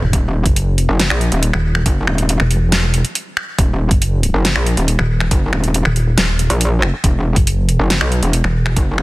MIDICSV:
0, 0, Header, 1, 4, 480
1, 0, Start_track
1, 0, Tempo, 431655
1, 147, Time_signature, 4, 2, 24, 8
1, 10035, End_track
2, 0, Start_track
2, 0, Title_t, "Wobble bass"
2, 0, Program_c, 0, 39
2, 147, Note_on_c, 0, 27, 97
2, 488, Note_off_c, 0, 27, 0
2, 988, Note_on_c, 0, 30, 100
2, 1208, Note_off_c, 0, 30, 0
2, 1227, Note_on_c, 0, 34, 99
2, 1448, Note_off_c, 0, 34, 0
2, 1468, Note_on_c, 0, 27, 98
2, 1688, Note_off_c, 0, 27, 0
2, 2067, Note_on_c, 0, 30, 101
2, 2288, Note_off_c, 0, 30, 0
2, 2307, Note_on_c, 0, 27, 94
2, 2648, Note_off_c, 0, 27, 0
2, 3987, Note_on_c, 0, 27, 101
2, 4328, Note_off_c, 0, 27, 0
2, 4827, Note_on_c, 0, 30, 105
2, 5048, Note_off_c, 0, 30, 0
2, 5068, Note_on_c, 0, 34, 100
2, 5288, Note_off_c, 0, 34, 0
2, 5307, Note_on_c, 0, 27, 97
2, 5528, Note_off_c, 0, 27, 0
2, 5907, Note_on_c, 0, 30, 104
2, 6128, Note_off_c, 0, 30, 0
2, 6147, Note_on_c, 0, 27, 99
2, 6488, Note_off_c, 0, 27, 0
2, 7228, Note_on_c, 0, 34, 95
2, 7688, Note_off_c, 0, 34, 0
2, 7827, Note_on_c, 0, 28, 95
2, 8168, Note_off_c, 0, 28, 0
2, 8668, Note_on_c, 0, 30, 99
2, 8888, Note_off_c, 0, 30, 0
2, 8908, Note_on_c, 0, 35, 100
2, 9128, Note_off_c, 0, 35, 0
2, 9147, Note_on_c, 0, 28, 94
2, 9368, Note_off_c, 0, 28, 0
2, 9747, Note_on_c, 0, 30, 101
2, 9968, Note_off_c, 0, 30, 0
2, 9987, Note_on_c, 0, 28, 96
2, 10035, Note_off_c, 0, 28, 0
2, 10035, End_track
3, 0, Start_track
3, 0, Title_t, "Wobble bass"
3, 0, Program_c, 1, 39
3, 28, Note_on_c, 1, 28, 93
3, 128, Note_off_c, 1, 28, 0
3, 507, Note_on_c, 1, 30, 95
3, 968, Note_off_c, 1, 30, 0
3, 1708, Note_on_c, 1, 27, 102
3, 2048, Note_off_c, 1, 27, 0
3, 2667, Note_on_c, 1, 28, 96
3, 3368, Note_off_c, 1, 28, 0
3, 4347, Note_on_c, 1, 30, 98
3, 4808, Note_off_c, 1, 30, 0
3, 5548, Note_on_c, 1, 27, 106
3, 5888, Note_off_c, 1, 27, 0
3, 6507, Note_on_c, 1, 27, 98
3, 6848, Note_off_c, 1, 27, 0
3, 6867, Note_on_c, 1, 27, 102
3, 7208, Note_off_c, 1, 27, 0
3, 8187, Note_on_c, 1, 30, 99
3, 8648, Note_off_c, 1, 30, 0
3, 9387, Note_on_c, 1, 28, 109
3, 9728, Note_off_c, 1, 28, 0
3, 10035, End_track
4, 0, Start_track
4, 0, Title_t, "Drums"
4, 27, Note_on_c, 9, 45, 87
4, 139, Note_off_c, 9, 45, 0
4, 146, Note_on_c, 9, 36, 114
4, 147, Note_on_c, 9, 42, 81
4, 258, Note_off_c, 9, 36, 0
4, 258, Note_off_c, 9, 42, 0
4, 507, Note_on_c, 9, 36, 113
4, 508, Note_on_c, 9, 42, 58
4, 618, Note_off_c, 9, 36, 0
4, 619, Note_off_c, 9, 42, 0
4, 627, Note_on_c, 9, 42, 77
4, 738, Note_off_c, 9, 42, 0
4, 867, Note_on_c, 9, 42, 52
4, 978, Note_off_c, 9, 42, 0
4, 1107, Note_on_c, 9, 38, 124
4, 1107, Note_on_c, 9, 42, 86
4, 1218, Note_off_c, 9, 38, 0
4, 1218, Note_off_c, 9, 42, 0
4, 1227, Note_on_c, 9, 26, 89
4, 1338, Note_off_c, 9, 26, 0
4, 1346, Note_on_c, 9, 42, 54
4, 1457, Note_off_c, 9, 42, 0
4, 1467, Note_on_c, 9, 42, 55
4, 1578, Note_off_c, 9, 42, 0
4, 1586, Note_on_c, 9, 42, 84
4, 1697, Note_off_c, 9, 42, 0
4, 1707, Note_on_c, 9, 26, 56
4, 1818, Note_off_c, 9, 26, 0
4, 1947, Note_on_c, 9, 26, 70
4, 2058, Note_off_c, 9, 26, 0
4, 2066, Note_on_c, 9, 36, 119
4, 2066, Note_on_c, 9, 42, 79
4, 2177, Note_off_c, 9, 36, 0
4, 2177, Note_off_c, 9, 42, 0
4, 2306, Note_on_c, 9, 26, 54
4, 2417, Note_off_c, 9, 26, 0
4, 2427, Note_on_c, 9, 42, 60
4, 2538, Note_off_c, 9, 42, 0
4, 2547, Note_on_c, 9, 42, 80
4, 2658, Note_off_c, 9, 42, 0
4, 2667, Note_on_c, 9, 26, 53
4, 2778, Note_off_c, 9, 26, 0
4, 2786, Note_on_c, 9, 42, 56
4, 2898, Note_off_c, 9, 42, 0
4, 3027, Note_on_c, 9, 38, 127
4, 3027, Note_on_c, 9, 42, 84
4, 3138, Note_off_c, 9, 38, 0
4, 3138, Note_off_c, 9, 42, 0
4, 3266, Note_on_c, 9, 42, 56
4, 3378, Note_off_c, 9, 42, 0
4, 3387, Note_on_c, 9, 42, 54
4, 3498, Note_off_c, 9, 42, 0
4, 3507, Note_on_c, 9, 42, 85
4, 3618, Note_off_c, 9, 42, 0
4, 3747, Note_on_c, 9, 26, 82
4, 3858, Note_off_c, 9, 26, 0
4, 3987, Note_on_c, 9, 36, 113
4, 3987, Note_on_c, 9, 42, 78
4, 4098, Note_off_c, 9, 36, 0
4, 4098, Note_off_c, 9, 42, 0
4, 4347, Note_on_c, 9, 36, 113
4, 4347, Note_on_c, 9, 42, 59
4, 4458, Note_off_c, 9, 36, 0
4, 4458, Note_off_c, 9, 42, 0
4, 4467, Note_on_c, 9, 42, 77
4, 4578, Note_off_c, 9, 42, 0
4, 4707, Note_on_c, 9, 42, 55
4, 4818, Note_off_c, 9, 42, 0
4, 4947, Note_on_c, 9, 38, 127
4, 4947, Note_on_c, 9, 42, 87
4, 5058, Note_off_c, 9, 38, 0
4, 5058, Note_off_c, 9, 42, 0
4, 5067, Note_on_c, 9, 26, 79
4, 5178, Note_off_c, 9, 26, 0
4, 5187, Note_on_c, 9, 42, 54
4, 5298, Note_off_c, 9, 42, 0
4, 5307, Note_on_c, 9, 42, 51
4, 5419, Note_off_c, 9, 42, 0
4, 5427, Note_on_c, 9, 42, 81
4, 5538, Note_off_c, 9, 42, 0
4, 5547, Note_on_c, 9, 26, 48
4, 5659, Note_off_c, 9, 26, 0
4, 5788, Note_on_c, 9, 26, 63
4, 5899, Note_off_c, 9, 26, 0
4, 5907, Note_on_c, 9, 36, 113
4, 5907, Note_on_c, 9, 42, 77
4, 6018, Note_off_c, 9, 36, 0
4, 6018, Note_off_c, 9, 42, 0
4, 6147, Note_on_c, 9, 26, 53
4, 6258, Note_off_c, 9, 26, 0
4, 6267, Note_on_c, 9, 42, 53
4, 6379, Note_off_c, 9, 42, 0
4, 6387, Note_on_c, 9, 42, 73
4, 6498, Note_off_c, 9, 42, 0
4, 6507, Note_on_c, 9, 26, 49
4, 6619, Note_off_c, 9, 26, 0
4, 6627, Note_on_c, 9, 42, 54
4, 6738, Note_off_c, 9, 42, 0
4, 6867, Note_on_c, 9, 38, 127
4, 6867, Note_on_c, 9, 42, 83
4, 6979, Note_off_c, 9, 38, 0
4, 6979, Note_off_c, 9, 42, 0
4, 7108, Note_on_c, 9, 42, 51
4, 7219, Note_off_c, 9, 42, 0
4, 7228, Note_on_c, 9, 42, 52
4, 7340, Note_off_c, 9, 42, 0
4, 7348, Note_on_c, 9, 42, 75
4, 7459, Note_off_c, 9, 42, 0
4, 7588, Note_on_c, 9, 26, 78
4, 7699, Note_off_c, 9, 26, 0
4, 7827, Note_on_c, 9, 36, 114
4, 7828, Note_on_c, 9, 42, 75
4, 7938, Note_off_c, 9, 36, 0
4, 7939, Note_off_c, 9, 42, 0
4, 8187, Note_on_c, 9, 36, 104
4, 8188, Note_on_c, 9, 42, 55
4, 8298, Note_off_c, 9, 36, 0
4, 8299, Note_off_c, 9, 42, 0
4, 8308, Note_on_c, 9, 42, 78
4, 8419, Note_off_c, 9, 42, 0
4, 8547, Note_on_c, 9, 42, 48
4, 8658, Note_off_c, 9, 42, 0
4, 8787, Note_on_c, 9, 38, 121
4, 8787, Note_on_c, 9, 42, 80
4, 8898, Note_off_c, 9, 38, 0
4, 8898, Note_off_c, 9, 42, 0
4, 8907, Note_on_c, 9, 26, 77
4, 9019, Note_off_c, 9, 26, 0
4, 9027, Note_on_c, 9, 42, 50
4, 9138, Note_off_c, 9, 42, 0
4, 9147, Note_on_c, 9, 42, 49
4, 9258, Note_off_c, 9, 42, 0
4, 9267, Note_on_c, 9, 42, 77
4, 9378, Note_off_c, 9, 42, 0
4, 9387, Note_on_c, 9, 26, 49
4, 9498, Note_off_c, 9, 26, 0
4, 9627, Note_on_c, 9, 26, 63
4, 9738, Note_off_c, 9, 26, 0
4, 9746, Note_on_c, 9, 42, 75
4, 9747, Note_on_c, 9, 36, 112
4, 9858, Note_off_c, 9, 36, 0
4, 9858, Note_off_c, 9, 42, 0
4, 9987, Note_on_c, 9, 26, 56
4, 10035, Note_off_c, 9, 26, 0
4, 10035, End_track
0, 0, End_of_file